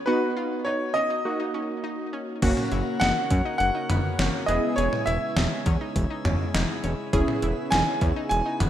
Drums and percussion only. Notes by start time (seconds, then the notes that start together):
2.42 kick, closed hi-hat, crash
2.57 mid tom
2.72 closed hi-hat
3.01 snare, closed hi-hat
3.31 kick, closed hi-hat
3.60 closed hi-hat
3.90 closed hi-hat, mid tom
4.19 snare, closed hi-hat
4.49 closed hi-hat
4.78 closed hi-hat
4.93 mid tom
5.07 closed hi-hat
5.37 snare, closed hi-hat
5.66 kick, closed hi-hat
5.96 kick, closed hi-hat
6.25 closed hi-hat, mid tom
6.55 snare, closed hi-hat
6.84 closed hi-hat
7.13 kick, closed hi-hat
7.28 mid tom
7.42 closed hi-hat
7.72 snare, closed hi-hat
8.01 kick, closed hi-hat
8.31 closed hi-hat
8.60 closed hi-hat, mid tom